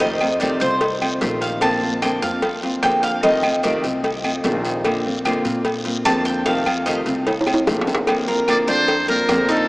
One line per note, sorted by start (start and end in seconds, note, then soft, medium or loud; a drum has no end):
0.00 0.55 F2 medium
0.00 0.21 C3 medium
0.00 0.21 D#3 medium
0.00 0.21 A3 medium
0.00 0.21 C4 medium
0.00 0.20 F4 medium
0.00 0.38 D#5 loud
0.00 cowbell loud
0.00 low agogo medium
0.00 long guiro medium
0.21 0.41 A3 soft
0.21 0.41 C4 soft
0.21 0.40 F4 soft
0.21 low agogo loud
0.21 claves medium
0.40 0.61 C3 medium
0.40 0.61 D#3 medium
0.40 0.61 A3 medium
0.40 0.61 C4 medium
0.40 0.60 F4 medium
0.40 0.60 D5 medium
0.40 cowbell medium
0.40 low timbale medium
0.40 low agogo medium
0.40 short guiro medium
0.60 1.18 C2 medium
0.60 0.81 A3 soft
0.60 0.81 C4 medium
0.60 0.81 F4 medium
0.60 0.99 C5 loud
0.60 cowbell medium
0.60 short guiro medium
0.81 muted nylon-string guitar stroke medium
0.81 cowbell loud
0.81 low agogo medium
0.81 long guiro medium
1.02 1.22 A3 soft
1.02 1.21 C4 medium
1.02 1.21 F4 medium
1.02 low agogo loud
1.02 claves medium
1.21 2.17 A#1 medium
1.21 1.62 C3 medium
1.21 1.62 D#3 medium
1.21 1.62 A3 medium
1.21 1.62 C4 medium
1.21 1.62 F4 medium
1.21 cowbell medium
1.21 low timbale medium
1.21 short guiro medium
1.41 1.61 F5 medium
1.41 low agogo medium
1.41 short guiro medium
1.61 1.82 D3 medium
1.61 1.82 A#3 medium
1.61 1.82 C4 medium
1.61 1.82 F4 medium
1.61 2.00 A5 loud
1.61 cowbell medium
1.61 low agogo loud
1.61 long guiro medium
1.61 claves medium
1.83 2.01 A#3 soft
1.83 2.02 C4 soft
1.83 2.02 F4 soft
2.02 2.22 D3 medium
2.02 2.22 A#3 medium
2.02 2.22 C4 medium
2.02 2.22 F4 medium
2.02 2.22 G5 medium
2.02 cowbell medium
2.02 low timbale medium
2.02 low agogo loud
2.02 short guiro medium
2.02 claves medium
2.22 2.79 F2 medium
2.22 2.42 A#3 soft
2.22 2.42 C4 soft
2.22 2.42 F4 medium
2.22 2.60 F5 loud
2.22 cowbell medium
2.22 short guiro medium
2.42 muted nylon-string guitar stroke medium
2.42 cowbell loud
2.42 low agogo medium
2.42 long guiro medium
2.63 2.82 A#3 soft
2.63 2.83 C4 soft
2.63 2.82 F4 medium
2.63 cowbell medium
2.83 3.78 F2 loud
2.83 3.23 D3 medium
2.83 3.23 A#3 medium
2.83 3.23 C4 medium
2.83 3.23 F4 medium
2.83 3.02 G5 medium
2.83 cowbell medium
2.83 low timbale medium
2.83 low agogo medium
2.83 short guiro medium
2.83 claves medium
3.03 3.23 F5 loud
3.03 cowbell medium
3.03 short guiro medium
3.23 3.43 C3 medium
3.23 3.43 D#3 medium
3.23 3.43 A3 medium
3.23 3.43 C4 medium
3.23 3.43 F4 medium
3.23 3.61 D#5 medium
3.23 cowbell loud
3.23 low agogo medium
3.23 long guiro medium
3.43 3.63 A3 soft
3.43 3.64 C4 soft
3.43 3.63 F4 soft
3.43 low agogo loud
3.43 claves medium
3.63 3.83 C3 medium
3.63 3.83 D#3 medium
3.63 3.84 A3 medium
3.63 3.83 C4 medium
3.63 3.82 F4 medium
3.63 3.83 D5 medium
3.63 cowbell medium
3.63 low timbale medium
3.63 low agogo medium
3.63 short guiro medium
3.84 4.40 C2 medium
3.84 4.02 A3 soft
3.84 4.03 C4 medium
3.84 4.03 F4 soft
3.84 cowbell medium
3.84 short guiro medium
4.03 muted nylon-string guitar stroke medium
4.03 cowbell medium
4.03 low agogo medium
4.03 long guiro medium
4.24 4.44 A3 soft
4.24 4.44 C4 soft
4.24 4.43 F4 medium
4.24 low agogo loud
4.24 claves medium
4.44 5.39 A#1 loud
4.44 4.84 C3 medium
4.44 4.84 D#3 medium
4.44 4.84 A3 medium
4.44 4.84 C4 medium
4.44 4.85 F4 medium
4.44 cowbell medium
4.44 low timbale medium
4.44 short guiro medium
4.65 low agogo medium
4.65 short guiro medium
4.85 5.04 D3 medium
4.85 5.04 A#3 medium
4.85 5.05 C4 medium
4.85 5.04 F4 medium
4.85 cowbell loud
4.85 low agogo loud
4.85 long guiro medium
4.85 claves medium
5.05 5.24 A#3 soft
5.05 5.25 C4 medium
5.05 5.24 F4 medium
5.25 5.44 D3 medium
5.25 5.45 A#3 medium
5.25 5.44 C4 medium
5.25 5.43 F4 loud
5.25 cowbell medium
5.25 low timbale medium
5.25 low agogo loud
5.25 short guiro medium
5.25 claves medium
5.45 6.02 A#2 medium
5.45 5.64 A#3 soft
5.45 5.64 C4 medium
5.45 5.64 F4 medium
5.45 cowbell medium
5.45 short guiro medium
5.65 muted nylon-string guitar stroke medium
5.65 cowbell loud
5.65 low agogo medium
5.65 long guiro medium
5.85 6.05 A#3 soft
5.85 6.05 C4 medium
5.85 6.05 F4 medium
5.85 cowbell medium
6.05 7.01 F2 loud
6.05 6.45 D3 medium
6.05 6.45 A#3 medium
6.05 6.46 C4 medium
6.05 6.46 F4 medium
6.05 6.25 A5 loud
6.05 cowbell medium
6.05 low timbale medium
6.05 low agogo loud
6.05 short guiro medium
6.05 claves medium
6.25 6.45 G5 medium
6.25 cowbell medium
6.25 short guiro medium
6.46 6.66 C3 medium
6.46 6.66 D#3 medium
6.46 6.66 A3 medium
6.46 6.65 C4 medium
6.46 6.64 F4 medium
6.46 6.83 F5 loud
6.46 cowbell loud
6.46 low agogo medium
6.46 long guiro medium
6.65 6.86 A3 soft
6.65 6.86 C4 soft
6.65 6.85 F4 medium
6.65 low agogo loud
6.65 claves medium
6.86 7.06 C3 medium
6.86 7.06 D#3 medium
6.86 7.06 A3 medium
6.86 7.06 C4 medium
6.86 7.05 F4 medium
6.86 6.98 D#5 medium
6.86 cowbell medium
6.86 low timbale medium
6.86 low agogo medium
6.86 short guiro medium
7.06 7.63 C2 medium
7.06 7.26 A3 soft
7.06 7.26 C4 soft
7.06 7.26 F4 soft
7.06 cowbell medium
7.06 short guiro medium
7.27 muted nylon-string guitar stroke medium
7.27 cowbell loud
7.27 high timbale medium
7.27 low agogo medium
7.27 long guiro medium
7.41 high timbale loud
7.47 7.66 A3 soft
7.47 7.67 C4 soft
7.47 7.66 F4 medium
7.47 high bongo medium
7.47 low agogo loud
7.47 claves medium
7.54 high timbale medium
7.67 8.62 A#1 loud
7.67 8.06 C3 medium
7.67 8.07 D#3 medium
7.67 8.07 A3 medium
7.67 8.07 C4 medium
7.67 8.07 F4 medium
7.67 cowbell medium
7.67 high bongo loud
7.67 short guiro medium
7.81 low timbale medium
7.87 low bongo medium
7.87 low agogo medium
7.87 short guiro medium
7.95 low timbale loud
8.07 8.27 D3 medium
8.07 8.27 A#3 medium
8.07 8.27 C4 medium
8.07 8.26 F4 medium
8.07 cowbell loud
8.07 low agogo loud
8.07 long guiro medium
8.07 claves medium
8.28 8.47 A#3 soft
8.28 8.47 C4 soft
8.28 8.47 F4 medium
8.28 8.67 A#4 medium
8.47 8.67 D3 medium
8.47 8.67 A#3 medium
8.47 8.68 C4 medium
8.47 8.66 F4 medium
8.47 8.58 D5 loud
8.47 cowbell medium
8.47 low timbale medium
8.47 low agogo loud
8.47 short guiro medium
8.47 claves medium
8.68 9.25 F2 medium
8.68 8.87 A#3 soft
8.68 8.88 C4 soft
8.68 9.07 D4 loud
8.68 8.87 F4 medium
8.68 9.06 C5 loud
8.68 cowbell medium
8.68 short guiro medium
8.88 muted nylon-string guitar stroke medium
8.88 cowbell loud
8.88 low agogo medium
8.88 long guiro medium
9.08 9.27 A#3 soft
9.08 9.28 C4 medium
9.08 9.28 F4 medium
9.08 9.47 A#4 medium
9.08 9.47 A#4 loud
9.08 cowbell medium
9.28 9.68 F2 loud
9.28 9.68 D3 medium
9.28 9.68 A#3 medium
9.28 9.68 C4 medium
9.28 9.68 F4 medium
9.28 cowbell medium
9.28 low timbale medium
9.28 low agogo medium
9.28 short guiro medium
9.28 claves medium
9.49 9.68 D#4 medium
9.49 9.68 A4 loud
9.49 cowbell medium
9.49 short guiro medium